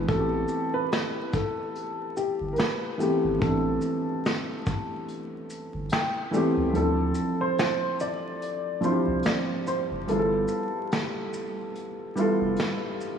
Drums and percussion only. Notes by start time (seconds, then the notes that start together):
0.08 kick, closed hi-hat
0.48 shaker
0.92 snare, closed hi-hat
1.33 kick, shaker
1.75 closed hi-hat
2.17 shaker
2.56 snare, closed hi-hat
3.00 closed hi-hat, shaker
3.41 kick, closed hi-hat
3.81 shaker
4.25 snare, closed hi-hat
4.67 kick, shaker
5.08 closed hi-hat
5.50 closed hi-hat, shaker
5.89 snare, closed hi-hat
6.34 closed hi-hat, shaker
6.75 closed hi-hat
7.15 shaker
7.58 snare, closed hi-hat
8.00 shaker
8.42 closed hi-hat
8.83 shaker
9.23 snare, closed hi-hat
9.67 shaker
10.08 closed hi-hat
10.48 shaker
10.92 snare, closed hi-hat
11.33 shaker
11.75 closed hi-hat
12.17 shaker
12.56 snare, closed hi-hat
13.01 shaker